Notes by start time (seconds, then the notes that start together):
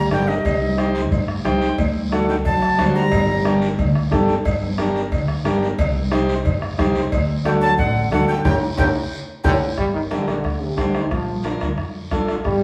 Already playing: G3 A#5
0.11 G1 D3 D4 G4 A#4 G5, bombo rim, high conga, short guiro
0.28 C3 D#5, short guiro
0.45 C2, bombo low, cowbell, low conga, long guiro
0.61 high conga
0.78 D#4 G4 C5, bombo rim, high conga, short guiro
0.95 short guiro
1.12 G2, bombo low, cowbell, low conga, long guiro
1.28 bombo rim
1.45 C2 D#4 G4 C5 G5, bombo rim, high conga, short guiro
1.61 short guiro
1.78 D2, bombo low, cowbell, long guiro
1.95 high conga
2.12 D3 D4 F#4 A4 F#5, bombo rim, high conga, short guiro
2.29 D#3 G5, short guiro
2.45 A1 F#3 A5, bombo low, cowbell, low conga, long guiro
2.62 bombo rim
2.78 D2 D4 F#4 C5, bombo rim, high conga, low timbale, short guiro
2.95 G3 A#5, short guiro
3.12 G1, bombo low, cowbell, low conga, long guiro
3.28 high conga
3.45 D4 G4 A#4, bombo rim, high conga, short guiro
3.62 short guiro
3.78 D2, bombo low, cowbell, low conga, long guiro
3.95 bombo rim
4.11 G1 D4 G4 A4, bombo low, bombo rim, high conga, low conga, short guiro
4.28 short guiro
4.45 G1, bombo low, cowbell, long guiro
4.62 high conga
4.78 D4 G4 A#4, bombo rim, high conga, short guiro
4.96 short guiro
5.12 D2, bombo low, cowbell, low conga, long guiro
5.28 bombo rim
5.45 G1 D4 G4 A#4, bombo rim, high conga, short guiro
5.62 short guiro
5.78 C2, bombo low, cowbell, low conga, long guiro
5.95 high conga
6.11 D#4 G4 C5, bombo rim, high conga, short guiro
6.29 short guiro
6.45 G2, bombo low, cowbell, low conga, long guiro
6.62 bombo rim
6.78 C2 D#4 G4 C5, bombo low, bombo rim, high conga, low conga, short guiro
6.95 short guiro
7.12 D2, bombo low, cowbell, long guiro
7.45 D3 D4 F#4 A4 G5, bombo rim, high conga, short guiro
7.61 F#3 A5, short guiro
7.78 A1 D3 F#5, bombo low, cowbell, low conga, long guiro
8.11 D2 D3 D4 F#4 A4 F#5, bombo rim, high conga, short guiro
8.28 D3 G5, short guiro
8.44 G1 D3 D4 G4 A#4 G5, bombo low, low conga, high timbale, long guiro
8.77 G1 D3 D4 G4 A#4 G5, bombo low, low conga, high timbale, long guiro
9.44 G1 D3 D4 G4 A#4 G5, bombo low, low conga, high timbale, long guiro
9.78 G1 G3, bombo low, bombo rim, high conga, long guiro
9.94 D#3
10.11 D3 D4 G4 A#4, bombo rim, high conga, short guiro
10.27 A#1 D3, bombo rim, short guiro
10.44 D2, bombo rim, high conga, long guiro
10.61 C3
10.77 D2 D3 D4 G4 C5, bombo low, bombo rim, high conga, short guiro
10.94 D#3, bombo rim, short guiro
11.11 A#1 F3, bombo low, bombo rim, high conga, long guiro
11.27 high conga
11.44 D4 F4 A#4, bombo rim, high conga, short guiro
11.60 D2, bombo rim, high conga, short guiro
11.77 F2, bombo rim, high conga, long guiro
12.11 A1 D4 F4 A4, bombo low, bombo rim, high conga, short guiro
12.28 bombo rim, short guiro
12.44 G1 G3, bombo low, bombo rim, high conga, long guiro